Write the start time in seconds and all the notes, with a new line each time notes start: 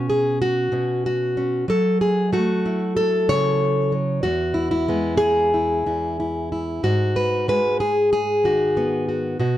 Already playing: B2 C#4
0.10 G#4
0.42 F#4
0.72 B2 C#4
1.06 F#4
1.37 C#4
1.68 F#3 A4
2.01 G#4
2.33 A3 F#4
2.66 E4
2.97 A4
3.29 C#3 C#5
3.92 F#3
4.23 E2 F#4
4.54 E4
4.71 E4
4.88 G#3 B3
5.17 G#4
5.54 E4
5.86 E2 E4
6.20 E4
6.52 E4
6.83 G#2 F#4
7.16 B4
7.48 G#3 B4
7.80 G#4
8.13 G#4
8.44 D#3 F#4
8.77 B3
9.09 F#4
9.39 B2 F#4